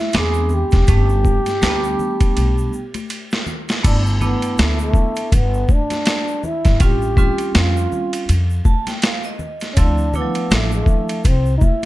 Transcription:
0.00 0.16 E4 medium
0.13 0.62 E2 medium
0.13 0.76 G#3 medium
0.13 0.76 B3 medium
0.13 0.76 C4 medium
0.13 0.76 D4 medium
0.13 snare loud
0.13 hi-hat pedal medium
0.13 ride medium
0.13 shaker medium
0.18 0.56 G#4 loud
0.34 shaker soft
0.49 low conga medium
0.49 shaker soft
0.54 3.12 G4 loud
0.71 0.85 E1 medium
0.71 kick medium
0.71 snare soft
0.71 ride soft
0.71 shaker soft
0.87 1.36 G1 medium
0.87 1.44 G3 medium
0.87 1.44 A3 medium
0.87 1.44 B3 medium
0.87 0.96 C#4 medium
0.87 kick loud
0.87 ride medium
0.87 shaker medium
0.96 1.48 D4 medium
1.09 shaker soft
1.25 kick medium
1.25 high conga soft
1.25 shaker soft
1.46 snare soft
1.46 ride soft
1.46 shaker soft
1.62 1.92 D2 medium
1.62 2.69 G3 medium
1.62 2.69 A3 medium
1.62 1.70 A#3 medium
1.62 2.70 D4 medium
1.62 snare loud
1.62 hi-hat pedal soft
1.62 ride medium
1.62 shaker medium
1.69 2.73 B3 medium
1.84 shaker soft
1.99 low conga soft
1.99 shaker soft
2.20 kick medium
2.20 ride medium
2.20 shaker soft
2.36 2.66 B1 medium
2.36 ride medium
2.36 high conga soft
2.36 shaker medium
2.58 shaker soft
2.73 shaker medium
2.94 ride medium
2.94 high conga medium
2.94 shaker soft
3.10 hi-hat pedal medium
3.10 ride medium
3.10 shaker medium
3.31 snare medium
3.31 shaker soft
3.46 low conga medium
3.46 shaker soft
3.69 snare medium
3.69 ride soft
3.69 shaker soft
3.83 4.32 G1 loud
3.83 4.12 A3 medium
3.83 4.12 B3 medium
3.83 4.13 D4 medium
3.83 4.02 D4 medium
3.83 4.13 E4 medium
3.83 kick loud
3.83 crash medium
3.83 ride medium
3.83 shaker medium
4.06 shaker soft
4.21 5.29 A3 medium
4.21 5.29 B3 medium
4.21 4.63 B3 medium
4.21 5.29 D4 medium
4.21 5.29 E4 medium
4.21 high conga soft
4.21 low conga medium
4.21 shaker medium
4.42 ride medium
4.42 shaker soft
4.58 4.89 D2 medium
4.58 4.81 A3 medium
4.58 snare loud
4.58 hi-hat pedal soft
4.58 ride medium
4.58 shaker medium
4.79 5.37 A3 medium
4.79 shaker medium
4.94 kick medium
4.94 low conga medium
4.94 shaker soft
5.16 ride medium
5.16 shaker soft
5.32 5.63 G1 medium
5.32 5.75 B3 medium
5.32 kick medium
5.32 ride medium
5.32 shaker medium
5.54 shaker soft
5.69 kick medium
5.69 high conga medium
5.69 shaker medium
5.73 6.48 D4 medium
5.90 snare soft
5.90 ride medium
5.90 high conga medium
5.90 shaker soft
6.06 snare loud
6.06 hi-hat pedal medium
6.06 ride medium
6.06 shaker medium
6.28 shaker soft
6.44 6.85 E4 medium
6.44 low conga medium
6.44 shaker soft
6.65 6.78 G1 loud
6.65 kick medium
6.65 snare soft
6.65 ride soft
6.65 shaker soft
6.80 7.28 A1 medium
6.80 7.09 G3 medium
6.80 7.09 C4 medium
6.80 7.09 C#4 medium
6.80 7.09 F4 medium
6.80 7.59 G4 loud
6.80 kick loud
6.80 ride medium
6.80 shaker medium
7.02 shaker soft
7.17 8.25 G3 medium
7.17 8.25 C4 medium
7.17 8.25 C#4 medium
7.17 8.25 F4 medium
7.17 kick medium
7.17 high conga soft
7.17 low conga medium
7.17 shaker soft
7.38 ride medium
7.38 shaker soft
7.55 7.85 F2 medium
7.55 8.30 F4 medium
7.55 snare loud
7.55 hi-hat pedal medium
7.55 ride medium
7.55 shaker medium
7.77 shaker medium
7.92 low conga medium
7.92 shaker soft
8.13 ride medium
8.13 shaker soft
8.29 8.59 F2 medium
8.29 ride medium
8.29 shaker medium
8.50 shaker soft
8.65 8.85 A5 medium
8.65 kick medium
8.65 high conga medium
8.65 shaker soft
8.87 9.02 G5 medium
8.87 snare soft
8.87 ride medium
8.87 high conga medium
8.87 shaker soft
9.02 9.23 F5 medium
9.02 snare loud
9.02 hi-hat pedal medium
9.02 ride medium
9.02 shaker medium
9.24 9.73 D#5 medium
9.24 shaker soft
9.39 low conga medium
9.39 shaker soft
9.60 snare soft
9.60 ride soft
9.60 shaker soft
9.73 10.25 D2 medium
9.73 9.82 C#4 medium
9.73 kick loud
9.73 ride medium
9.73 shaker medium
9.77 10.05 F3 medium
9.77 10.06 A3 medium
9.77 10.06 C4 medium
9.77 10.18 D4 medium
9.77 10.06 E4 medium
9.98 shaker soft
10.14 11.22 A3 medium
10.14 10.55 B3 medium
10.14 11.22 D4 medium
10.14 11.22 E4 medium
10.14 high conga medium
10.14 low conga medium
10.14 shaker medium
10.21 11.25 F3 medium
10.34 ride medium
10.34 shaker soft
10.50 10.81 A1 medium
10.50 10.74 A3 medium
10.50 snare loud
10.50 hi-hat pedal medium
10.50 ride medium
10.50 shaker medium
10.72 11.29 A3 medium
10.72 shaker medium
10.86 kick medium
10.86 low conga medium
10.86 shaker soft
11.09 ride medium
11.09 shaker soft
11.24 11.55 C2 medium
11.24 11.57 C4 medium
11.24 kick medium
11.24 ride medium
11.24 shaker medium
11.46 shaker soft
11.58 11.65 D#4 medium
11.58 kick medium
11.58 high conga medium
11.58 shaker medium
11.63 11.85 E4 loud

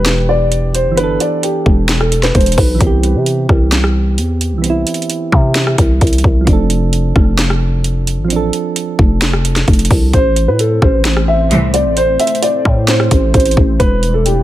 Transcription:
0.00 0.87 E1 loud
0.00 0.90 E3 medium
0.00 0.93 B3 medium
0.00 0.95 D4 medium
0.00 0.97 G4 medium
0.00 0.26 B4 medium
0.06 snare loud
0.06 closed hi-hat medium
0.29 0.72 D5 medium
0.52 closed hi-hat medium
0.74 0.95 C5 medium
0.74 closed hi-hat medium
0.86 1.19 G1 loud
0.92 2.74 E3 medium
0.92 2.76 B3 medium
0.97 2.78 D4 medium
0.97 1.18 B4 loud
0.97 closed hi-hat medium
1.03 2.80 A4 medium
1.20 1.41 D5 medium
1.20 closed hi-hat medium
1.43 1.97 G4 medium
1.43 closed hi-hat medium
1.66 2.32 E1 loud
1.66 kick loud
1.89 snare loud
1.89 closed hi-hat medium
2.00 2.21 A4 medium
2.00 cross-stick medium
2.12 closed hi-hat medium
2.23 2.33 B4 medium
2.23 snare medium
2.23 closed hi-hat medium
2.35 2.57 E1 loud
2.35 2.55 C5 medium
2.35 kick medium
2.35 closed hi-hat soft
2.41 closed hi-hat medium
2.46 closed hi-hat medium
2.52 closed hi-hat medium
2.57 2.80 B1 loud
2.57 2.78 B4 medium
2.57 kick medium
2.57 open hi-hat medium
2.75 4.57 E3 medium
2.75 4.59 B3 medium
2.81 3.16 C2 loud
2.81 4.61 C4 medium
2.81 kick loud
2.81 closed hi-hat medium
2.87 4.63 G4 medium
3.03 closed hi-hat medium
3.15 3.48 C3 loud
3.26 closed hi-hat medium
3.49 4.20 C2 loud
3.49 kick loud
3.49 cross-stick medium
3.72 snare loud
3.72 closed hi-hat medium
3.84 cross-stick loud
4.18 4.54 E2 loud
4.18 closed hi-hat medium
4.41 closed hi-hat medium
4.52 4.85 C2 loud
4.58 6.40 E3 medium
4.58 6.42 B3 medium
4.64 6.44 C4 medium
4.64 closed hi-hat medium
4.70 6.46 E4 medium
4.87 closed hi-hat medium
4.94 closed hi-hat medium
5.02 closed hi-hat soft
5.10 closed hi-hat medium
5.32 5.76 C3 loud
5.32 kick loud
5.32 cross-stick medium
5.55 snare loud
5.55 closed hi-hat medium
5.67 cross-stick loud
5.78 6.00 C2 loud
5.78 kick medium
5.78 closed hi-hat medium
6.01 6.23 C2 loud
6.01 kick medium
6.01 closed hi-hat medium
6.07 closed hi-hat medium
6.13 closed hi-hat medium
6.18 closed hi-hat medium
6.24 6.46 C2 loud
6.24 kick medium
6.41 8.23 F3 medium
6.41 8.26 C4 medium
6.47 7.13 F1 loud
6.47 8.28 D4 medium
6.47 kick loud
6.47 closed hi-hat medium
6.53 8.30 A4 medium
6.70 closed hi-hat medium
6.93 closed hi-hat medium
7.16 8.20 F1 loud
7.16 kick loud
7.16 cross-stick medium
7.39 snare loud
7.39 closed hi-hat medium
7.50 cross-stick medium
7.84 closed hi-hat medium
8.07 closed hi-hat medium
8.19 8.51 A1 loud
8.24 10.07 F3 medium
8.24 10.09 C4 medium
8.30 10.11 D4 medium
8.30 closed hi-hat medium
8.36 10.13 A4 medium
8.53 closed hi-hat medium
8.76 closed hi-hat medium
8.99 9.65 F1 loud
8.99 kick medium
9.22 snare loud
9.22 closed hi-hat medium
9.33 cross-stick medium
9.45 closed hi-hat medium
9.56 snare medium
9.56 closed hi-hat medium
9.68 9.90 F1 loud
9.68 kick medium
9.68 closed hi-hat soft
9.73 closed hi-hat medium
9.79 closed hi-hat medium
9.85 closed hi-hat medium
9.91 10.13 C2 loud
9.91 kick medium
9.91 open hi-hat medium
10.13 10.49 A1 loud
10.13 13.76 A3 medium
10.13 13.76 C4 medium
10.13 14.43 E4 medium
10.13 13.76 C5 medium
10.13 10.46 C5 loud
10.13 kick loud
10.13 closed hi-hat medium
10.36 closed hi-hat medium
10.48 10.80 A2 medium
10.48 10.58 B4 medium
10.59 10.80 A4 medium
10.59 closed hi-hat medium
10.82 11.52 A1 loud
10.82 11.25 C5 medium
10.82 kick loud
10.82 cross-stick medium
11.05 snare loud
11.05 closed hi-hat medium
11.17 cross-stick loud
11.28 11.71 E5 medium
11.51 11.87 C2 loud
11.51 11.70 C2 loud
11.51 11.70 A2 loud
11.51 11.70 E3 loud
11.51 closed hi-hat medium
11.74 11.94 D5 medium
11.74 closed hi-hat medium
11.85 12.18 A1 loud
11.97 12.17 C5 loud
11.97 closed hi-hat medium
12.20 12.40 E5 medium
12.20 closed hi-hat medium
12.27 closed hi-hat medium
12.35 closed hi-hat soft
12.42 12.85 D5 medium
12.42 closed hi-hat medium
12.65 13.09 A2 loud
12.65 kick loud
12.65 cross-stick medium
12.88 13.31 C5 medium
12.88 snare loud
12.88 closed hi-hat medium
13.00 cross-stick loud
13.11 13.33 A1 loud
13.11 kick medium
13.11 closed hi-hat medium
13.34 13.56 A1 loud
13.34 13.54 C5 medium
13.34 kick loud
13.34 closed hi-hat medium
13.40 closed hi-hat medium
13.46 closed hi-hat medium
13.51 closed hi-hat medium
13.57 13.79 A1 loud
13.57 kick loud
13.80 14.43 E1 loud
13.80 14.43 G3 medium
13.80 14.43 D4 medium
13.80 14.12 B4 loud
13.80 14.43 D5 medium
13.80 kick loud
13.80 closed hi-hat medium
14.03 closed hi-hat medium
14.14 14.24 A4 medium
14.25 14.43 G4 medium
14.25 closed hi-hat medium

